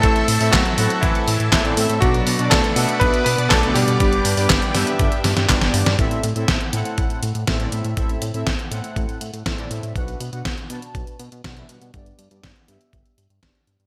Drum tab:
HH |xxooxxoxxxoxxxox|xxoxxxoxxxoxoxox|xxooxxoxxxoxxxox|xxxxxxxxxxxxxxxx|
CP |----x-------x---|----x-------x---|----x-------x---|----------------|
SD |----o-------o---|----o-------o---|----o-o---oooo-o|----o-------o---|
BD |o---o---o---o---|o---o---o---o---|o---o---o---o---|o---o---o---o---|

HH |xxxxxxxxxxxxxxxx|xxxxxxxxxxxxxxxx|xxxxxxxxxxxxxxxx|
CP |----------------|----------------|----------------|
SD |----o-------o---|----o-------o---|----o-------o---|
BD |o---o---o---o---|o---o---o---o---|o---o---o---o---|